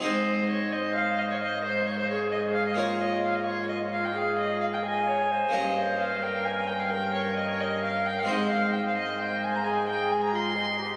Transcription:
<<
  \new Staff \with { instrumentName = "Violin" } { \time 12/8 \key aes \major \tempo 4. = 87 c''4 des''8 ees''8 f''8 ees''16 des''16 ees''8 c''8 des''16 c''16 des''8 ees''8 f''16 ees''16 | des''8 ees''8 f''16 ees''16 des''8 ees''8 f''16 g''16 f''8 ees''8 f''16 g''16 aes''4. | ees''4 f''8 g''8 aes''8 g''16 f''16 g''8 des''8 ees''16 des''16 ees''8 f''8 g''16 f''16 | ees''8 f''8 g''16 f''16 ees''8 g''8 aes''16 bes''16 aes''8 g''8 aes''16 bes''16 c'''4. | }
  \new Staff \with { instrumentName = "Recorder" } { \time 12/8 \key aes \major ees''4. c''2. aes'4. | f'2. aes'4. ees''8 des''8 c''8~ | c''4. bes'4 r8 bes'2. | c''2. aes'4. f'8 ees''8 g'8 | }
  \new Staff \with { instrumentName = "Harpsichord" } { \time 12/8 \key aes \major <c' ees' aes'>1. | <bes des' bes'>1. | <bes des' bes'>1. | <aes c' c''>1. | }
  \new Staff \with { instrumentName = "Harpsichord" } { \clef bass \time 12/8 \key aes \major aes,1.~ | aes,1. | g,1. | aes,1. | }
  \new Staff \with { instrumentName = "Cello" } { \clef bass \time 12/8 \key aes \major aes,1.~ | aes,1. | g,1. | aes,1. | }
>>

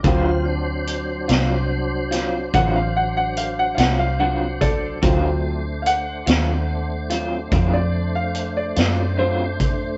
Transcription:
<<
  \new Staff \with { instrumentName = "Grand piano" } { \time 12/8 \key d \phrygian \tempo 4. = 48 << { d'''4 r2 fis''16 eis''16 fis''16 fis''16 eis''16 fis''16 <eis'' fis''>16 eis''16 fis''8 <a' d''>8 | r4 <eis'' fis''>2~ <eis'' fis''>16 d''8 eis''8 d''8. c''4 | } \\ { <fis c' eis'>4. r1 r8 | <fis c' eis'>8 r1 r4. | } >> }
  \new Staff \with { instrumentName = "Tonewheel organ" } { \time 12/8 \key d \phrygian <fis eis' c''>8 <fis d' c''>1~ <fis d' c''>4. | <a d' c''>1. | }
  \new Staff \with { instrumentName = "Clean electric guitar" } { \time 12/8 \key d \phrygian <d fis c' eis'>8 r4 <fis c' eis'>8 r8 <fis c' eis'>8 <d fis c' eis'>8 r4 <fis c' eis'>8 <d fis c' eis'>8 r8 | <d fis c' eis'>8 r4 <fis c' eis'>8 r8 <fis c' eis'>8 <d fis c' eis'>8 r4 <fis c' eis'>8 <d fis c' eis'>8 r8 | }
  \new Staff \with { instrumentName = "Fingered electric bass" } { \clef bass \time 12/8 \key d \phrygian d,4. c,4. a,,4. c,4. | d,4. ees,4. eis,4. fis,4. | }
  \new DrumStaff \with { instrumentName = "Drums" } \drummode { \time 12/8 <hh bd>4 hh8 <hh sn>4 <hh sn>8 <hh bd>4 hh8 <hh sn>4 <hh bd>8 | <hh bd>4 hh8 <hh sn>4 hh8 <hh bd>4 hh8 <hh sn>4 <hh bd>8 | }
>>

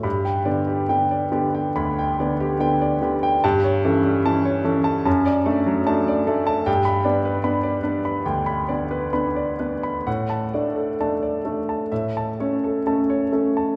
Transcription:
<<
  \new Staff \with { instrumentName = "Grand piano" } { \time 4/4 \key g \major \tempo 4 = 71 b''16 g''16 d''16 g'16 g''16 d''16 g'16 g''16 b''16 g''16 d''16 g'16 g''16 d''16 g'16 g''16 | a''16 cis''16 a'16 g16 a''16 cis''16 a'16 a''16 a''16 d''16 a'16 fis16 a''16 d''16 a'16 a''16 | \key g \lydian g''16 b''16 d''16 b'16 b''16 d''16 b'16 b''16 g''16 b''16 d''16 b'16 b''16 d''16 b'16 b''16 | fis''16 a''16 d''16 a'16 a''16 d''16 a'16 a''16 e''16 a''16 cis''16 a'16 a''16 cis''16 a'16 a''16 | }
  \new Staff \with { instrumentName = "Grand piano" } { \time 4/4 \key g \major g,8 <d b>8 <d b>8 <d b>8 d,8 <d b>8 <d b>8 <d b>8 | g,8 <e cis'>8 <e cis'>8 <e cis'>8 fis,8 <a d'>8 <a d'>8 <a d'>8 | \key g \lydian g,8 <b d'>8 <b d'>8 <b d'>8 d,8 <b d'>8 <b d'>8 <b d'>8 | a,8 <a d'>8 <a d'>8 <a d'>8 a,8 <a cis'>8 <a cis'>8 <a cis'>8 | }
>>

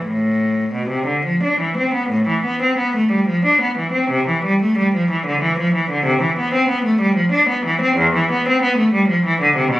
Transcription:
\new Staff \with { instrumentName = "Cello" } { \clef bass \time 3/4 \key a \minor \tempo 4 = 92 a,4 b,16 c16 d16 f16 d'16 e16 c'16 b16 | a,16 e16 b16 c'16 b16 a16 g16 f16 d'16 b16 e16 c'16 | c16 e16 g16 a16 g16 f16 e16 d16 e16 f16 e16 d16 | c16 e16 b16 c'16 b16 a16 g16 f16 d'16 b16 e16 c'16 |
e,16 e16 b16 c'16 b16 a16 g16 f16 e16 d16 c16 b,16 | }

